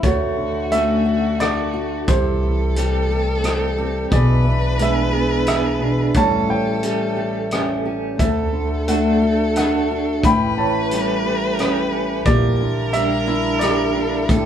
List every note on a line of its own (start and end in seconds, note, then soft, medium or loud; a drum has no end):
0.03 2.04 D2 medium
0.03 2.08 D2 medium
0.03 2.06 D3 medium
0.03 2.06 A3 medium
0.03 0.73 A3 medium
0.03 2.06 F#4 medium
0.03 2.04 F#4 medium
0.03 1.03 F#4 medium
0.03 0.74 C#5 medium
0.03 kick medium
0.03 closed hi-hat soft
0.36 2.08 D3 soft
0.72 2.04 A3 soft
0.72 1.06 A3 soft
0.72 1.41 C#4 medium
0.72 1.40 F#4 medium
0.72 1.42 E5 medium
0.72 closed hi-hat soft
1.06 1.72 F#4 medium
1.40 2.15 A3 soft
1.40 2.04 D4 medium
1.40 2.16 F#4 medium
1.40 2.10 D5 medium
1.40 cross-stick medium
1.40 closed hi-hat soft
1.74 2.04 F#4 medium
2.07 4.08 C2 medium
2.07 2.42 C3 medium
2.07 4.10 C3 medium
2.07 4.13 E3 medium
2.07 4.10 G3 medium
2.07 3.41 G4 medium
2.07 4.07 A4 medium
2.07 3.40 C5 medium
2.07 kick medium
2.07 closed hi-hat medium
2.43 4.44 E3 soft
2.76 4.12 G3 medium
2.76 3.10 A3 soft
2.76 3.44 C4 soft
2.76 3.45 G4 medium
2.76 closed hi-hat soft
3.11 3.44 A3 medium
3.11 3.77 G4 medium
3.44 4.19 A3 soft
3.44 4.07 C4 medium
3.44 3.77 C4 soft
3.44 4.20 G4 medium
3.44 cross-stick medium
3.44 closed hi-hat soft
3.78 4.19 C4 medium
3.78 4.08 G4 medium
4.11 6.11 B1 medium
4.11 4.45 B2 medium
4.11 6.13 E3 medium
4.11 6.14 E3 medium
4.11 6.13 G#3 medium
4.11 6.13 D4 medium
4.11 5.10 G#4 medium
4.11 6.17 B4 loud
4.11 4.82 D5 medium
4.11 kick medium
4.11 closed hi-hat soft
4.44 6.10 E3 soft
4.79 6.11 G#3 medium
4.79 5.13 B3 soft
4.79 5.47 D4 soft
4.79 5.48 G#4 medium
4.79 5.47 E5 medium
4.79 closed hi-hat soft
5.13 5.46 B3 medium
5.13 6.11 G#4 medium
5.47 6.22 B3 soft
5.47 5.80 D4 medium
5.47 6.23 G#4 medium
5.47 6.17 E5 medium
5.47 cross-stick medium
5.47 closed hi-hat soft
5.80 6.14 B2 medium
5.80 6.22 D4 medium
6.14 8.15 A1 medium
6.14 8.20 A2 medium
6.14 6.47 E3 soft
6.14 8.17 G3 medium
6.14 6.83 G3 medium
6.14 12.22 A3 medium
6.14 8.17 C#4 medium
6.14 7.51 C#4 soft
6.14 7.16 G4 medium
6.14 7.86 A4 medium
6.14 6.49 C#5 medium
6.14 6.51 A5 medium
6.14 kick medium
6.14 closed hi-hat soft
6.48 8.15 E3 soft
6.48 7.82 C#5 medium
6.48 7.82 G5 medium
6.83 8.20 G3 medium
6.83 7.17 A3 medium
6.83 7.51 C#4 soft
6.83 7.52 G4 soft
6.83 closed hi-hat soft
7.17 7.51 A3 soft
7.17 7.84 G4 medium
7.51 8.19 A3 medium
7.51 7.85 C#4 medium
7.51 8.16 C#4 soft
7.51 8.27 G4 medium
7.51 cross-stick medium
7.51 closed hi-hat soft
7.85 8.27 C#4 medium
7.85 8.15 G4 medium
8.18 10.23 D2 medium
8.18 10.19 D2 medium
8.18 10.22 D3 medium
8.18 8.88 A3 medium
8.18 10.21 F#4 medium
8.18 10.26 A4 medium
8.18 8.90 E5 medium
8.18 kick medium
8.18 closed hi-hat soft
8.22 9.19 A4 medium
8.53 10.23 D3 soft
8.88 10.19 A3 medium
8.88 9.22 A3 soft
8.88 9.57 D4 soft
8.88 9.57 F#4 medium
8.88 9.55 F#5 medium
8.88 closed hi-hat soft
9.22 9.56 A3 soft
9.22 9.90 F#4 medium
9.56 10.31 A3 soft
9.56 10.20 D4 soft
9.56 9.90 D4 soft
9.56 10.32 F#4 medium
9.56 10.26 F#5 medium
9.56 cross-stick medium
9.56 closed hi-hat soft
9.91 10.31 D4 soft
9.91 10.20 F#4 medium
10.22 12.22 A1 medium
10.22 12.26 A2 medium
10.22 12.26 E3 medium
10.22 12.23 C#4 medium
10.22 12.23 G4 medium
10.22 12.27 B4 loud
10.22 10.59 B5 medium
10.22 kick medium
10.22 closed hi-hat soft
10.27 11.23 G5 medium
10.57 12.29 E3 medium
10.57 11.90 C#5 medium
10.57 11.89 A5 medium
10.91 12.94 G3 medium
10.91 11.25 A3 medium
10.91 11.59 C#4 medium
10.91 11.60 G4 medium
10.91 closed hi-hat soft
11.26 11.58 A3 medium
11.26 11.92 G4 medium
11.59 12.33 A3 medium
11.59 12.22 C#4 medium
11.59 11.91 C#4 medium
11.59 12.95 G4 medium
11.59 cross-stick medium
11.59 closed hi-hat soft
11.92 12.33 C#4 medium
11.92 13.27 G4 medium
12.25 14.25 A#1 medium
12.25 12.60 A#2 medium
12.25 14.28 E3 medium
12.25 14.27 A#3 medium
12.25 14.27 E4 medium
12.25 13.24 G4 medium
12.25 14.31 A#4 loud
12.25 12.95 D5 medium
12.25 14.27 A5 medium
12.25 kick medium
12.25 closed hi-hat soft
12.60 14.46 D3 soft
12.93 14.46 G3 medium
12.93 13.27 A#3 medium
12.93 13.61 D4 medium
12.93 13.62 G4 medium
12.93 13.63 E5 medium
12.93 closed hi-hat soft
13.27 13.61 A#3 medium
13.27 13.94 E4 medium
13.59 14.37 A#3 medium
13.59 14.26 D4 medium
13.59 13.94 D4 soft
13.59 14.37 G4 medium
13.59 14.46 D5 medium
13.59 cross-stick medium
13.59 closed hi-hat soft
13.64 14.46 G4 medium
13.95 14.36 D4 medium
13.95 14.46 E4 medium
14.29 14.46 A1 medium
14.29 14.46 A2 medium
14.29 14.46 E3 medium
14.29 14.46 A3 medium
14.29 14.46 D4 medium
14.29 14.46 G4 medium
14.29 14.46 A4 medium
14.29 kick medium
14.29 closed hi-hat soft